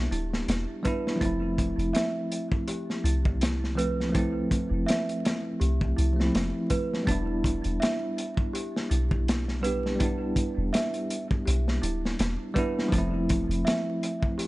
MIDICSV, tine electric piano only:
0, 0, Header, 1, 2, 480
1, 0, Start_track
1, 0, Tempo, 731707
1, 797, Time_signature, 4, 2, 24, 8
1, 9495, End_track
2, 0, Start_track
2, 0, Title_t, "Tine electric piano"
2, 0, Program_c, 0, 4
2, 0, Control_c, 0, 64, 127
2, 0, Note_on_c, 0, 55, 66
2, 0, Note_on_c, 0, 59, 60
2, 0, Note_on_c, 0, 62, 62
2, 0, Note_on_c, 0, 64, 77
2, 516, Note_off_c, 0, 55, 0
2, 528, Note_off_c, 0, 59, 0
2, 537, Note_off_c, 0, 62, 0
2, 543, Note_on_c, 0, 55, 91
2, 546, Note_off_c, 0, 64, 0
2, 551, Note_on_c, 0, 59, 82
2, 559, Note_on_c, 0, 62, 83
2, 571, Note_on_c, 0, 64, 101
2, 733, Note_off_c, 0, 55, 0
2, 737, Note_off_c, 0, 59, 0
2, 741, Note_off_c, 0, 62, 0
2, 747, Note_off_c, 0, 64, 0
2, 760, Note_on_c, 0, 53, 83
2, 781, Note_on_c, 0, 57, 77
2, 802, Note_on_c, 0, 60, 77
2, 807, Control_c, 0, 64, 0
2, 821, Note_on_c, 0, 64, 93
2, 916, Control_c, 0, 64, 127
2, 2432, Note_off_c, 0, 53, 0
2, 2443, Note_off_c, 0, 57, 0
2, 2454, Note_off_c, 0, 60, 0
2, 2462, Note_on_c, 0, 53, 75
2, 2463, Note_off_c, 0, 64, 0
2, 2472, Note_on_c, 0, 57, 70
2, 2480, Note_on_c, 0, 60, 70
2, 2676, Note_off_c, 0, 53, 0
2, 2684, Note_on_c, 0, 53, 69
2, 2689, Note_off_c, 0, 57, 0
2, 2693, Note_off_c, 0, 60, 0
2, 2704, Note_on_c, 0, 57, 61
2, 2726, Note_on_c, 0, 60, 67
2, 2748, Note_on_c, 0, 64, 72
2, 4006, Note_off_c, 0, 53, 0
2, 4016, Note_off_c, 0, 57, 0
2, 4020, Note_on_c, 0, 53, 75
2, 4027, Note_off_c, 0, 60, 0
2, 4038, Note_off_c, 0, 64, 0
2, 4043, Note_on_c, 0, 57, 68
2, 4064, Note_on_c, 0, 60, 65
2, 4086, Note_on_c, 0, 64, 80
2, 4597, Note_off_c, 0, 53, 0
2, 4608, Note_off_c, 0, 57, 0
2, 4610, Note_on_c, 0, 55, 82
2, 4619, Note_off_c, 0, 60, 0
2, 4629, Note_off_c, 0, 64, 0
2, 4629, Note_on_c, 0, 59, 76
2, 4646, Control_c, 0, 64, 0
2, 4648, Note_on_c, 0, 62, 81
2, 4668, Note_on_c, 0, 64, 92
2, 4748, Control_c, 0, 64, 127
2, 6277, Note_off_c, 0, 55, 0
2, 6287, Note_off_c, 0, 59, 0
2, 6297, Note_off_c, 0, 62, 0
2, 6307, Note_off_c, 0, 64, 0
2, 6307, Note_on_c, 0, 55, 74
2, 6320, Note_on_c, 0, 59, 65
2, 6332, Note_on_c, 0, 62, 68
2, 6340, Note_on_c, 0, 67, 80
2, 6525, Note_off_c, 0, 55, 0
2, 6532, Note_off_c, 0, 59, 0
2, 6532, Note_on_c, 0, 55, 75
2, 6539, Note_off_c, 0, 62, 0
2, 6542, Note_off_c, 0, 67, 0
2, 6554, Note_on_c, 0, 59, 69
2, 6574, Note_on_c, 0, 62, 64
2, 6594, Note_on_c, 0, 64, 73
2, 8199, Note_off_c, 0, 55, 0
2, 8210, Note_off_c, 0, 59, 0
2, 8220, Note_off_c, 0, 62, 0
2, 8226, Note_on_c, 0, 55, 98
2, 8229, Note_off_c, 0, 64, 0
2, 8239, Note_on_c, 0, 59, 83
2, 8247, Note_on_c, 0, 62, 82
2, 8256, Note_on_c, 0, 64, 105
2, 8415, Note_off_c, 0, 55, 0
2, 8421, Note_off_c, 0, 59, 0
2, 8425, Note_off_c, 0, 62, 0
2, 8430, Note_off_c, 0, 64, 0
2, 8452, Note_on_c, 0, 53, 90
2, 8475, Note_on_c, 0, 57, 79
2, 8485, Control_c, 0, 64, 0
2, 8498, Note_on_c, 0, 60, 79
2, 8516, Note_on_c, 0, 64, 96
2, 8598, Control_c, 0, 64, 127
2, 9495, Note_off_c, 0, 53, 0
2, 9495, Note_off_c, 0, 57, 0
2, 9495, Note_off_c, 0, 60, 0
2, 9495, Note_off_c, 0, 64, 0
2, 9495, End_track
0, 0, End_of_file